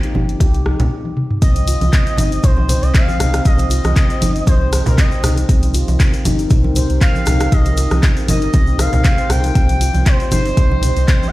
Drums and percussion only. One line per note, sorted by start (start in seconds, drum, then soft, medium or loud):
0.03 closed hi-hat soft
0.03 muted conga soft
0.15 high conga loud
0.15 low conga medium
0.29 closed hi-hat soft
0.40 kick loud
0.40 closed hi-hat medium
0.40 high conga loud
0.40 low conga loud
0.54 closed hi-hat soft
0.54 muted conga medium
0.66 cross-stick medium
0.66 high conga medium
0.80 closed hi-hat soft
0.80 low conga loud
1.05 high tom medium
1.17 mid tom medium
1.30 mid tom medium
1.42 kick loud
1.42 closed hi-hat medium
1.42 shaker medium
1.55 closed hi-hat soft
1.55 high conga medium
1.55 shaker soft
1.68 open hi-hat medium
1.68 muted conga medium
1.68 shaker loud
1.81 closed hi-hat soft
1.81 high conga loud
1.81 shaker soft
1.93 kick loud
1.93 clap loud
1.93 closed hi-hat medium
1.93 shaker medium
2.07 closed hi-hat soft
2.07 muted conga soft
2.07 shaker soft
2.17 open hi-hat medium
2.17 high conga loud
2.17 low conga loud
2.17 shaker medium
2.32 closed hi-hat soft
2.32 shaker soft
2.43 kick loud
2.43 closed hi-hat medium
2.43 low conga loud
2.43 shaker soft
2.57 muted conga soft
2.57 high conga loud
2.69 open hi-hat medium
2.69 low conga medium
2.69 shaker loud
2.83 closed hi-hat soft
2.83 shaker soft
2.94 kick loud
2.94 clap loud
2.94 closed hi-hat medium
2.94 muted conga soft
2.94 shaker medium
3.08 high conga medium
3.08 shaker soft
3.20 cross-stick medium
3.20 open hi-hat medium
3.20 high conga medium
3.20 low conga medium
3.20 shaker medium
3.34 cross-stick medium
3.34 closed hi-hat soft
3.34 muted conga medium
3.34 shaker soft
3.45 kick loud
3.45 closed hi-hat medium
3.45 shaker medium
3.58 closed hi-hat soft
3.58 high conga medium
3.58 shaker soft
3.70 open hi-hat medium
3.70 muted conga medium
3.70 shaker medium
3.84 cross-stick medium
3.84 closed hi-hat soft
3.84 high conga medium
3.84 shaker soft
3.96 kick loud
3.96 clap loud
3.96 closed hi-hat medium
3.96 shaker medium
4.10 closed hi-hat soft
4.10 muted conga soft
4.10 shaker soft
4.22 open hi-hat medium
4.22 high conga loud
4.22 low conga loud
4.22 shaker medium
4.36 closed hi-hat soft
4.36 shaker soft
4.47 kick loud
4.47 closed hi-hat medium
4.47 high conga loud
4.47 low conga medium
4.47 shaker medium
4.61 muted conga medium
4.73 cross-stick medium
4.73 open hi-hat medium
4.73 high conga medium
4.73 shaker medium
4.86 closed hi-hat soft
4.86 low conga loud
4.86 shaker soft
4.98 kick loud
4.98 clap loud
4.98 closed hi-hat medium
4.98 shaker medium
5.12 shaker soft
5.24 cross-stick loud
5.24 open hi-hat medium
5.24 low conga medium
5.24 shaker loud
5.36 closed hi-hat soft
5.36 muted conga soft
5.36 shaker soft
5.49 kick loud
5.49 closed hi-hat medium
5.49 shaker medium
5.62 closed hi-hat soft
5.62 high conga medium
5.62 shaker soft
5.74 open hi-hat medium
5.74 muted conga soft
5.74 shaker loud
5.88 closed hi-hat soft
5.88 high conga loud
5.88 shaker soft
6.00 kick loud
6.00 clap loud
6.00 closed hi-hat medium
6.00 shaker medium
6.13 closed hi-hat soft
6.13 muted conga soft
6.13 shaker soft
6.25 open hi-hat medium
6.25 high conga loud
6.25 low conga loud
6.25 shaker loud
6.39 closed hi-hat soft
6.39 shaker soft
6.50 kick loud
6.50 closed hi-hat medium
6.50 low conga medium
6.50 shaker medium
6.64 muted conga medium
6.64 high conga loud
6.76 open hi-hat medium
6.76 low conga medium
6.76 shaker loud
6.90 closed hi-hat soft
6.90 shaker soft
7.01 kick loud
7.01 clap loud
7.01 closed hi-hat medium
7.01 muted conga soft
7.01 shaker medium
7.15 high conga medium
7.15 shaker soft
7.26 cross-stick loud
7.26 open hi-hat medium
7.26 high conga medium
7.26 low conga medium
7.26 shaker loud
7.40 cross-stick loud
7.40 closed hi-hat soft
7.40 muted conga soft
7.40 shaker soft
7.52 kick loud
7.52 closed hi-hat medium
7.52 shaker medium
7.65 closed hi-hat soft
7.65 high conga medium
7.65 shaker soft
7.77 open hi-hat medium
7.77 muted conga soft
7.77 shaker loud
7.91 cross-stick medium
7.91 closed hi-hat soft
7.91 high conga medium
7.91 shaker soft
8.03 kick loud
8.03 clap loud
8.03 closed hi-hat medium
8.03 shaker medium
8.17 closed hi-hat soft
8.17 muted conga soft
8.17 shaker soft
8.28 open hi-hat medium
8.28 high conga loud
8.28 low conga medium
8.28 shaker loud
8.42 closed hi-hat soft
8.42 shaker soft
8.53 kick loud
8.53 closed hi-hat medium
8.53 high conga loud
8.53 low conga medium
8.53 shaker soft
8.67 muted conga soft
8.67 shaker soft
8.79 cross-stick medium
8.79 open hi-hat medium
8.79 high conga medium
8.79 shaker loud
8.93 closed hi-hat soft
8.93 low conga loud
8.93 shaker soft
9.04 kick loud
9.04 clap loud
9.04 closed hi-hat medium
9.04 shaker medium
9.18 closed hi-hat soft
9.18 shaker soft
9.29 cross-stick loud
9.29 open hi-hat medium
9.29 low conga medium
9.29 shaker medium
9.44 closed hi-hat soft
9.44 muted conga medium
9.44 shaker soft
9.55 kick loud
9.55 closed hi-hat medium
9.55 shaker soft
9.69 closed hi-hat soft
9.69 high conga medium
9.69 shaker soft
9.81 open hi-hat medium
9.81 muted conga soft
9.81 shaker loud
9.94 closed hi-hat soft
9.94 high conga medium
9.94 shaker soft
10.06 kick loud
10.06 clap loud
10.06 closed hi-hat medium
10.06 shaker medium
10.20 closed hi-hat soft
10.20 muted conga soft
10.20 shaker soft
10.32 open hi-hat medium
10.32 high conga loud
10.32 low conga loud
10.32 shaker loud
10.46 closed hi-hat soft
10.46 shaker soft
10.57 kick loud
10.57 closed hi-hat medium
10.57 low conga medium
10.57 shaker soft
10.71 muted conga soft
10.71 high conga loud
10.82 open hi-hat medium
10.82 low conga medium
10.82 shaker loud
10.97 closed hi-hat soft
10.97 shaker soft
11.08 kick loud
11.08 clap loud
11.08 closed hi-hat medium
11.08 muted conga soft
11.08 shaker medium
11.23 high conga loud
11.23 shaker soft